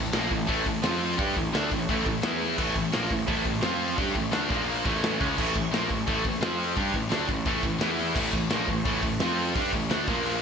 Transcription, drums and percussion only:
0.13 snare, open hi-hat
0.31 kick, open hi-hat
0.49 kick, open hi-hat
0.66 kick, open hi-hat
0.83 snare, open hi-hat
0.93 snare
1.02 open hi-hat
1.19 kick, open hi-hat
1.36 kick, open hi-hat
1.55 snare, open hi-hat
1.71 kick, open hi-hat
1.89 kick, open hi-hat
2.06 kick, open hi-hat
2.23 snare
2.41 open hi-hat
2.58 kick, crash
2.76 kick, open hi-hat
2.93 snare, open hi-hat
3.11 kick, open hi-hat
3.28 kick, open hi-hat
3.45 kick, open hi-hat
3.54 snare
3.62 snare, open hi-hat
3.81 open hi-hat
3.98 kick, open hi-hat
4.15 kick, open hi-hat
4.33 snare, open hi-hat
4.50 kick, open hi-hat
4.68 open hi-hat
4.86 kick, open hi-hat
4.95 snare
5.04 snare, open hi-hat
5.13 snare
5.21 kick, open hi-hat
5.38 kick, crash
5.56 kick, open hi-hat
5.74 snare, open hi-hat
5.90 kick, open hi-hat
6.08 kick, open hi-hat
6.25 kick, open hi-hat
6.34 snare
6.43 snare
6.60 open hi-hat
6.77 kick, open hi-hat
6.94 kick, open hi-hat
7.12 snare, open hi-hat
7.29 kick, open hi-hat
7.46 kick, open hi-hat
7.63 kick, open hi-hat
7.81 snare, open hi-hat
7.99 open hi-hat
8.16 kick, crash
8.33 kick, open hi-hat
8.50 snare, open hi-hat
8.68 kick, open hi-hat
8.85 kick, open hi-hat
9.03 kick, open hi-hat
9.12 snare
9.20 snare, open hi-hat
9.38 open hi-hat
9.56 kick, open hi-hat
9.73 kick, open hi-hat
9.91 snare, open hi-hat
10.07 kick, open hi-hat
10.25 open hi-hat

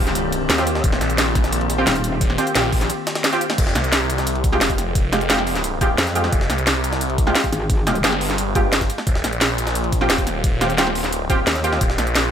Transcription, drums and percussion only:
0.07 snare, closed hi-hat
0.15 closed hi-hat, ride
0.32 closed hi-hat, ride
0.50 snare, closed hi-hat, ride
0.58 snare, closed hi-hat
0.67 closed hi-hat, ride
0.75 snare
0.84 kick, closed hi-hat, ride
0.93 snare
1.01 snare, closed hi-hat, ride
1.10 closed hi-hat, ride
1.18 snare, closed hi-hat, ride
1.35 kick, snare, closed hi-hat, ride
1.44 snare, closed hi-hat
1.53 closed hi-hat, ride
1.61 ride
1.70 closed hi-hat, ride
1.87 snare, closed hi-hat, open hi-hat
1.95 closed hi-hat
2.04 closed hi-hat, ride
2.21 kick, closed hi-hat, ride
2.30 snare
2.38 snare, closed hi-hat, ride
2.47 closed hi-hat, ride
2.55 snare, closed hi-hat, ride
2.73 kick, open hi-hat, ride
2.81 snare, closed hi-hat
2.90 closed hi-hat, ride
3.07 snare, closed hi-hat, ride
3.15 snare, ride
3.24 snare, closed hi-hat, ride
3.33 snare, closed hi-hat
3.41 closed hi-hat, ride
3.50 snare, ride
3.58 kick, closed hi-hat, crash, ride
3.67 snare
3.75 snare, closed hi-hat, ride
3.84 closed hi-hat, ride
3.92 snare, closed hi-hat, ride
4.10 closed hi-hat, ride
4.18 snare, closed hi-hat
4.27 closed hi-hat, ride
4.35 ride
4.44 kick, closed hi-hat, ride
4.53 snare
4.61 snare, closed hi-hat, open hi-hat
4.70 kick, closed hi-hat
4.78 snare, closed hi-hat, ride
4.95 kick, closed hi-hat, ride
5.13 snare, closed hi-hat, ride
5.21 closed hi-hat, ride
5.30 snare, closed hi-hat, ride
5.38 snare
5.47 open hi-hat, ride
5.55 snare, closed hi-hat
5.64 closed hi-hat, ride
5.81 kick, closed hi-hat, ride
5.98 snare, closed hi-hat, ride
6.07 snare, closed hi-hat
6.15 closed hi-hat, ride
6.24 snare
6.33 kick, closed hi-hat, ride
6.41 snare
6.50 snare, closed hi-hat, ride
6.58 closed hi-hat, ride
6.67 snare, closed hi-hat, ride
6.84 closed hi-hat, ride
6.93 snare, closed hi-hat
7.01 closed hi-hat, ride
7.10 ride
7.18 kick, closed hi-hat, ride
7.27 snare
7.35 snare, closed hi-hat, open hi-hat
7.44 kick, closed hi-hat
7.53 snare, closed hi-hat, ride
7.70 kick, closed hi-hat, ride
7.87 snare, closed hi-hat, ride
7.95 closed hi-hat, ride
8.04 snare, closed hi-hat, ride
8.13 snare
8.21 open hi-hat, ride
8.30 snare, closed hi-hat
8.38 closed hi-hat, ride
8.55 kick, closed hi-hat, ride
8.73 snare, closed hi-hat, ride
8.81 kick, snare, closed hi-hat
8.90 closed hi-hat, ride
8.98 snare
9.07 kick, closed hi-hat, ride
9.15 snare
9.24 snare, closed hi-hat, ride
9.33 closed hi-hat, ride
9.41 snare, closed hi-hat, ride
9.58 closed hi-hat, ride
9.67 snare, closed hi-hat
9.75 closed hi-hat, ride
9.84 ride
9.92 kick, closed hi-hat, ride
10.01 snare
10.10 snare, closed hi-hat, open hi-hat
10.18 kick, closed hi-hat
10.27 snare, closed hi-hat, ride
10.44 kick, closed hi-hat, ride
10.61 snare, closed hi-hat, ride
10.70 closed hi-hat, ride
10.78 snare, closed hi-hat, ride
10.87 snare
10.95 open hi-hat, ride
11.04 snare, closed hi-hat
11.13 closed hi-hat, ride
11.30 kick, closed hi-hat, ride
11.47 snare, closed hi-hat, ride
11.55 snare, closed hi-hat
11.64 closed hi-hat, ride
11.73 snare
11.81 kick, closed hi-hat, ride
11.90 snare
11.98 snare, closed hi-hat, ride
12.07 closed hi-hat, ride
12.15 snare, closed hi-hat, ride

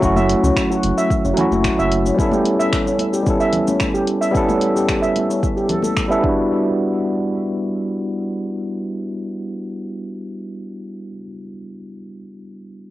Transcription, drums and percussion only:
0.02 kick, cabasa
0.16 high conga, cabasa
0.29 closed hi-hat
0.44 cabasa
0.56 finger snap, kick, cabasa
0.72 cabasa
0.83 closed hi-hat, high conga
0.98 cabasa
1.10 kick, cabasa
1.25 cabasa
1.37 closed hi-hat, low conga
1.52 high conga, cabasa
1.64 finger snap, kick, cabasa
1.79 cabasa
1.92 closed hi-hat
2.06 cabasa
2.19 kick, cabasa
2.31 high conga, cabasa
2.45 closed hi-hat
2.60 cabasa
2.73 finger snap, kick, cabasa
2.87 cabasa
2.98 closed hi-hat, high conga
3.14 cabasa
3.27 kick, cabasa
3.40 cabasa
3.53 closed hi-hat, low conga
3.68 high conga, cabasa
3.80 finger snap, kick, cabasa
3.95 cabasa
4.07 closed hi-hat
4.22 cabasa
4.35 kick, cabasa
4.49 high conga, cabasa
4.61 closed hi-hat
4.76 cabasa
4.88 finger snap, kick, cabasa
5.03 cabasa
5.16 closed hi-hat, high conga
5.30 cabasa
5.43 kick, cabasa
5.57 cabasa
5.69 closed hi-hat, low conga
5.82 high conga, cabasa
5.96 finger snap, kick, cabasa
6.11 cabasa
6.24 kick

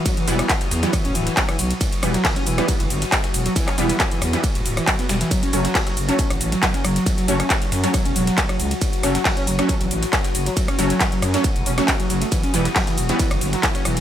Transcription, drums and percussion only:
0.06 kick, closed hi-hat, ride, shaker
0.17 closed hi-hat
0.28 open hi-hat, shaker
0.39 cross-stick, closed hi-hat
0.49 kick, snare, clap, closed hi-hat, ride, shaker
0.61 closed hi-hat
0.71 snare, open hi-hat, shaker
0.83 snare, closed hi-hat
0.93 kick, cross-stick, closed hi-hat, ride, shaker
1.05 closed hi-hat
1.15 open hi-hat, shaker
1.27 snare, closed hi-hat
1.37 kick, snare, clap, closed hi-hat, ride, shaker
1.49 cross-stick, closed hi-hat
1.59 open hi-hat, shaker
1.71 closed hi-hat
1.81 kick, closed hi-hat, ride, shaker
1.92 closed hi-hat
2.03 cross-stick, open hi-hat, shaker
2.14 snare, closed hi-hat
2.25 kick, snare, clap, closed hi-hat, open hi-hat, ride
2.36 snare, closed hi-hat
2.47 open hi-hat, shaker
2.58 cross-stick, closed hi-hat
2.68 kick, closed hi-hat, ride, shaker
2.80 closed hi-hat
2.90 open hi-hat, shaker
3.02 snare, closed hi-hat
3.12 kick, cross-stick, snare, clap, closed hi-hat, ride, shaker
3.24 snare, closed hi-hat
3.34 open hi-hat, shaker
3.46 closed hi-hat
3.56 kick, closed hi-hat, ride, shaker
3.68 cross-stick, clap, closed hi-hat
3.78 open hi-hat, shaker
3.90 closed hi-hat
4.00 kick, snare, clap, closed hi-hat, ride, shaker
4.11 closed hi-hat
4.22 cross-stick, snare, open hi-hat, shaker
4.33 snare, closed hi-hat
4.44 kick, closed hi-hat, ride, shaker
4.55 closed hi-hat
4.66 open hi-hat, shaker
4.77 cross-stick, closed hi-hat, open hi-hat
4.87 kick, clap, closed hi-hat, ride, shaker
4.99 snare, closed hi-hat
5.09 snare, open hi-hat, shaker
5.21 snare, closed hi-hat
5.31 kick, closed hi-hat, ride, shaker
5.43 closed hi-hat
5.53 open hi-hat, shaker
5.65 snare, closed hi-hat
5.75 kick, cross-stick, snare, clap, closed hi-hat, open hi-hat, ride
5.87 snare, closed hi-hat
5.97 open hi-hat, shaker
6.09 closed hi-hat
6.19 kick, closed hi-hat, ride, shaker
6.30 cross-stick, closed hi-hat
6.41 open hi-hat, shaker
6.52 snare, closed hi-hat
6.63 kick, snare, clap, closed hi-hat, ride, shaker
6.74 snare, closed hi-hat
6.85 cross-stick, open hi-hat, shaker
6.96 closed hi-hat
7.06 kick, closed hi-hat, ride, shaker
7.18 closed hi-hat
7.28 open hi-hat, shaker
7.40 cross-stick, closed hi-hat
7.50 kick, snare, clap, closed hi-hat, ride, shaker
7.62 closed hi-hat
7.72 snare, open hi-hat, shaker
7.84 snare, closed hi-hat
7.94 kick, cross-stick, closed hi-hat, ride, shaker
8.05 closed hi-hat
8.16 open hi-hat, shaker
8.27 snare, closed hi-hat
8.38 kick, snare, clap, closed hi-hat, ride, shaker
8.49 cross-stick, closed hi-hat
8.60 open hi-hat, shaker
8.71 closed hi-hat
8.82 kick, closed hi-hat, ride, shaker
8.93 closed hi-hat
9.03 cross-stick, open hi-hat, shaker
9.15 snare, closed hi-hat
9.25 kick, snare, clap, closed hi-hat, open hi-hat, ride
9.37 snare, closed hi-hat
9.47 open hi-hat, shaker
9.59 cross-stick, closed hi-hat
9.69 kick, closed hi-hat, ride, shaker
9.81 closed hi-hat
9.91 open hi-hat, shaker
10.03 snare, closed hi-hat
10.13 kick, cross-stick, snare, clap, closed hi-hat, ride, shaker
10.24 snare, closed hi-hat
10.35 open hi-hat, shaker
10.46 closed hi-hat
10.57 kick, closed hi-hat, ride, shaker
10.68 cross-stick, closed hi-hat
10.79 open hi-hat, shaker
10.90 closed hi-hat
11.01 kick, snare, clap, closed hi-hat, ride, shaker
11.12 closed hi-hat
11.22 cross-stick, snare, open hi-hat, shaker
11.34 snare, closed hi-hat
11.44 kick, closed hi-hat, ride, shaker
11.56 closed hi-hat
11.66 open hi-hat, shaker
11.78 cross-stick, snare, closed hi-hat
11.88 kick, snare, clap, closed hi-hat, ride, shaker
12.00 closed hi-hat
12.10 open hi-hat, shaker
12.22 closed hi-hat
12.32 kick, closed hi-hat, ride, shaker
12.43 closed hi-hat
12.54 open hi-hat, shaker
12.65 snare, closed hi-hat
12.76 kick, cross-stick, snare, clap, closed hi-hat, open hi-hat, ride
12.87 snare, closed hi-hat
12.98 open hi-hat, shaker
13.09 closed hi-hat
13.19 kick, closed hi-hat, ride, shaker
13.31 cross-stick, closed hi-hat
13.41 open hi-hat, shaker
13.53 snare, closed hi-hat
13.63 kick, snare, clap, closed hi-hat, ride, shaker
13.75 snare, closed hi-hat
13.85 cross-stick, open hi-hat, shaker
13.97 closed hi-hat

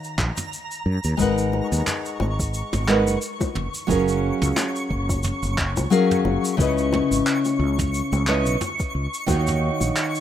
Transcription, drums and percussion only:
0.04 shaker
0.18 kick, clap
0.37 mid tom, shaker
0.53 shaker
0.71 shaker
1.04 shaker
1.19 kick, shaker
1.38 shaker
1.53 high bongo
1.72 shaker
1.87 clap, mid tom, shaker
2.05 shaker
2.20 high bongo
2.39 kick, shaker
2.54 shaker
2.73 mid tom, high bongo, shaker
2.88 clap
3.07 shaker
3.22 shaker
3.41 kick, high bongo, shaker
3.55 mid tom
3.74 shaker
3.89 kick, high bongo, shaker
4.08 shaker
4.42 mid tom, shaker
4.56 clap, high bongo, shaker
4.76 shaker
4.90 kick
5.09 kick, high bongo, shaker
5.23 mid tom, shaker
5.43 shaker
5.58 kick, clap
5.77 high bongo, shaker
5.92 shaker
6.11 mid tom, shaker
6.25 high bongo
6.45 shaker
6.59 kick, shaker
6.78 shaker
6.93 mid tom, high bongo
7.12 shaker
7.26 clap, shaker
7.45 high bongo, shaker
7.79 kick, mid tom, shaker
7.94 shaker
8.13 high bongo, shaker
8.27 clap
8.46 shaker
8.61 mid tom, high bongo, shaker
8.79 kick, shaker
9.14 shaker
9.28 kick, high bongo, shaker
9.47 mid tom, shaker
9.81 high bongo, shaker
9.96 clap, shaker
10.15 shaker

